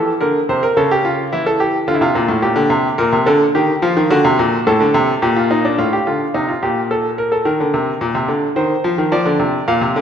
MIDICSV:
0, 0, Header, 1, 2, 480
1, 0, Start_track
1, 0, Key_signature, -2, "minor"
1, 0, Tempo, 557103
1, 662, Time_signature, 3, 2, 24, 8
1, 8626, End_track
2, 0, Start_track
2, 0, Title_t, "Grand piano"
2, 0, Program_c, 0, 0
2, 0, Note_on_c, 0, 52, 50
2, 0, Note_on_c, 0, 69, 61
2, 95, Note_off_c, 0, 69, 0
2, 97, Note_off_c, 0, 52, 0
2, 177, Note_on_c, 0, 70, 67
2, 180, Note_on_c, 0, 50, 58
2, 327, Note_off_c, 0, 70, 0
2, 329, Note_off_c, 0, 50, 0
2, 422, Note_on_c, 0, 48, 56
2, 425, Note_on_c, 0, 72, 66
2, 540, Note_off_c, 0, 72, 0
2, 542, Note_on_c, 0, 70, 69
2, 570, Note_off_c, 0, 48, 0
2, 658, Note_off_c, 0, 70, 0
2, 661, Note_on_c, 0, 49, 66
2, 663, Note_on_c, 0, 69, 68
2, 778, Note_off_c, 0, 69, 0
2, 788, Note_on_c, 0, 67, 74
2, 900, Note_off_c, 0, 67, 0
2, 903, Note_on_c, 0, 65, 67
2, 1050, Note_off_c, 0, 65, 0
2, 1124, Note_off_c, 0, 49, 0
2, 1142, Note_on_c, 0, 64, 71
2, 1144, Note_on_c, 0, 52, 60
2, 1256, Note_off_c, 0, 64, 0
2, 1261, Note_on_c, 0, 69, 69
2, 1375, Note_off_c, 0, 69, 0
2, 1379, Note_on_c, 0, 67, 66
2, 1526, Note_off_c, 0, 67, 0
2, 1604, Note_off_c, 0, 52, 0
2, 1617, Note_on_c, 0, 50, 63
2, 1618, Note_on_c, 0, 65, 73
2, 1675, Note_off_c, 0, 65, 0
2, 1675, Note_on_c, 0, 64, 58
2, 1732, Note_off_c, 0, 50, 0
2, 1732, Note_on_c, 0, 48, 64
2, 1735, Note_off_c, 0, 64, 0
2, 1739, Note_on_c, 0, 65, 75
2, 1850, Note_off_c, 0, 48, 0
2, 1854, Note_on_c, 0, 46, 70
2, 1968, Note_on_c, 0, 45, 67
2, 1971, Note_off_c, 0, 46, 0
2, 2086, Note_off_c, 0, 65, 0
2, 2086, Note_on_c, 0, 46, 65
2, 2088, Note_off_c, 0, 45, 0
2, 2089, Note_on_c, 0, 67, 66
2, 2203, Note_on_c, 0, 50, 81
2, 2207, Note_off_c, 0, 46, 0
2, 2325, Note_off_c, 0, 50, 0
2, 2325, Note_on_c, 0, 48, 76
2, 2477, Note_off_c, 0, 48, 0
2, 2558, Note_off_c, 0, 67, 0
2, 2569, Note_on_c, 0, 70, 74
2, 2572, Note_on_c, 0, 46, 81
2, 2691, Note_off_c, 0, 46, 0
2, 2692, Note_on_c, 0, 48, 70
2, 2720, Note_off_c, 0, 70, 0
2, 2810, Note_on_c, 0, 69, 63
2, 2811, Note_off_c, 0, 48, 0
2, 2814, Note_on_c, 0, 50, 88
2, 2962, Note_off_c, 0, 69, 0
2, 2964, Note_off_c, 0, 50, 0
2, 3056, Note_on_c, 0, 51, 79
2, 3057, Note_on_c, 0, 67, 67
2, 3207, Note_off_c, 0, 51, 0
2, 3207, Note_off_c, 0, 67, 0
2, 3294, Note_on_c, 0, 53, 83
2, 3296, Note_on_c, 0, 65, 70
2, 3414, Note_off_c, 0, 53, 0
2, 3417, Note_on_c, 0, 51, 82
2, 3447, Note_off_c, 0, 65, 0
2, 3536, Note_off_c, 0, 51, 0
2, 3536, Note_on_c, 0, 50, 86
2, 3538, Note_on_c, 0, 66, 72
2, 3656, Note_off_c, 0, 50, 0
2, 3658, Note_on_c, 0, 48, 83
2, 3778, Note_off_c, 0, 48, 0
2, 3782, Note_on_c, 0, 46, 83
2, 3933, Note_off_c, 0, 46, 0
2, 4010, Note_off_c, 0, 66, 0
2, 4022, Note_on_c, 0, 69, 70
2, 4023, Note_on_c, 0, 45, 85
2, 4139, Note_on_c, 0, 50, 75
2, 4142, Note_off_c, 0, 45, 0
2, 4259, Note_on_c, 0, 48, 84
2, 4261, Note_off_c, 0, 50, 0
2, 4412, Note_off_c, 0, 48, 0
2, 4494, Note_off_c, 0, 69, 0
2, 4499, Note_on_c, 0, 67, 64
2, 4500, Note_on_c, 0, 46, 86
2, 4621, Note_off_c, 0, 67, 0
2, 4622, Note_on_c, 0, 65, 63
2, 4744, Note_off_c, 0, 65, 0
2, 4744, Note_on_c, 0, 63, 66
2, 4865, Note_off_c, 0, 63, 0
2, 4866, Note_on_c, 0, 62, 65
2, 4974, Note_off_c, 0, 46, 0
2, 4982, Note_on_c, 0, 45, 55
2, 4984, Note_on_c, 0, 65, 68
2, 4987, Note_off_c, 0, 62, 0
2, 5106, Note_off_c, 0, 65, 0
2, 5108, Note_on_c, 0, 67, 60
2, 5136, Note_off_c, 0, 45, 0
2, 5229, Note_off_c, 0, 67, 0
2, 5229, Note_on_c, 0, 65, 58
2, 5230, Note_on_c, 0, 50, 48
2, 5381, Note_off_c, 0, 50, 0
2, 5381, Note_off_c, 0, 65, 0
2, 5466, Note_on_c, 0, 63, 61
2, 5467, Note_on_c, 0, 48, 52
2, 5588, Note_off_c, 0, 63, 0
2, 5588, Note_on_c, 0, 65, 52
2, 5619, Note_off_c, 0, 48, 0
2, 5709, Note_off_c, 0, 65, 0
2, 5709, Note_on_c, 0, 67, 57
2, 5711, Note_on_c, 0, 46, 51
2, 5860, Note_off_c, 0, 67, 0
2, 5952, Note_on_c, 0, 69, 59
2, 6102, Note_off_c, 0, 69, 0
2, 6189, Note_on_c, 0, 70, 58
2, 6305, Note_on_c, 0, 69, 59
2, 6309, Note_off_c, 0, 70, 0
2, 6411, Note_off_c, 0, 46, 0
2, 6422, Note_on_c, 0, 51, 68
2, 6422, Note_on_c, 0, 70, 56
2, 6426, Note_off_c, 0, 69, 0
2, 6544, Note_off_c, 0, 51, 0
2, 6549, Note_on_c, 0, 50, 62
2, 6666, Note_on_c, 0, 48, 63
2, 6667, Note_off_c, 0, 50, 0
2, 6816, Note_off_c, 0, 48, 0
2, 6901, Note_on_c, 0, 46, 73
2, 7019, Note_on_c, 0, 48, 65
2, 7022, Note_off_c, 0, 46, 0
2, 7137, Note_on_c, 0, 50, 61
2, 7140, Note_off_c, 0, 48, 0
2, 7288, Note_off_c, 0, 50, 0
2, 7352, Note_off_c, 0, 70, 0
2, 7375, Note_on_c, 0, 51, 70
2, 7377, Note_on_c, 0, 72, 61
2, 7527, Note_off_c, 0, 51, 0
2, 7619, Note_on_c, 0, 53, 74
2, 7739, Note_off_c, 0, 53, 0
2, 7739, Note_on_c, 0, 51, 66
2, 7846, Note_off_c, 0, 72, 0
2, 7856, Note_on_c, 0, 53, 78
2, 7858, Note_off_c, 0, 51, 0
2, 7860, Note_on_c, 0, 74, 65
2, 7974, Note_on_c, 0, 50, 74
2, 7977, Note_off_c, 0, 53, 0
2, 8094, Note_on_c, 0, 48, 64
2, 8096, Note_off_c, 0, 50, 0
2, 8246, Note_off_c, 0, 48, 0
2, 8328, Note_off_c, 0, 74, 0
2, 8338, Note_on_c, 0, 77, 73
2, 8339, Note_on_c, 0, 46, 76
2, 8455, Note_on_c, 0, 48, 72
2, 8459, Note_off_c, 0, 46, 0
2, 8577, Note_off_c, 0, 48, 0
2, 8582, Note_on_c, 0, 50, 77
2, 8626, Note_off_c, 0, 50, 0
2, 8626, Note_off_c, 0, 77, 0
2, 8626, End_track
0, 0, End_of_file